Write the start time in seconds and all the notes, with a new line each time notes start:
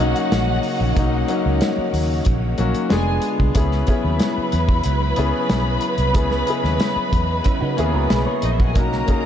Already playing: C#3 F#3 A#3 C#4 D#4 F#4 F#5
0.00 B1 A#3 C#4 D#4
0.16 closed hi-hat
0.32 A#1, snare, closed hi-hat
0.63 open hi-hat
0.80 A#1
0.96 F#3 A#3 C#4 D#4, kick, closed hi-hat
1.28 F#3 A#3 C#4 D#4, closed hi-hat
1.46 C#2
1.61 snare, closed hi-hat
1.78 muted fingered electric bass stroke
1.93 D#2, open hi-hat
2.25 A#1, kick, closed hi-hat
2.58 A#1 F#3 A#3 C#4 F#4, closed hi-hat
2.75 closed hi-hat
2.90 F1 D3 G#3 B3 D4 F4 G#4 G#5, snare, closed hi-hat
3.22 closed hi-hat
3.40 C2, kick
3.54 C#2 C#3 F#3 B3 C#4 E4 G#4 B4 B5, kick, closed hi-hat
3.71 snare
3.86 B3 C#4 E4 G#4, kick, closed hi-hat
4.04 D#2
4.19 snare, closed hi-hat
4.38 muted fingered electric bass stroke
4.52 E2, closed hi-hat
4.69 kick
4.84 C#2, closed hi-hat
5.16 C#2 B3 C#4 E4 G#4, closed hi-hat
5.50 B1, snare, closed hi-hat
5.81 closed hi-hat
5.98 C2, closed hi-hat
6.13 C#2 B3 C#4 E4 G#4 D#5, kick, closed hi-hat
6.31 snare
6.46 B3 C#4 E4 G#4, closed hi-hat
6.64 D#2, snare
6.80 snare, closed hi-hat
6.96 muted fingered electric bass stroke
7.13 E2, kick, closed hi-hat
7.44 C#4 E4, kick, closed hi-hat
7.61 C#3 D#4 F#4
7.76 D#2 A#3 C#4 E4 G#4, closed hi-hat
7.83 B3
7.94 C#2 F#4 A#4
8.10 B1 G#4 B4, snare, closed hi-hat
8.26 A#4 C#5
8.42 A#1 D#4 D#5, closed hi-hat
8.52 E4 E5
8.60 F#4 F#5, kick
8.67 G#4 G#5
8.74 B1 A#3 C#4 D#4 F#4 A#4 A#5, kick, closed hi-hat
8.92 snare
9.06 A#3 C#4 D#4 G#4, kick, closed hi-hat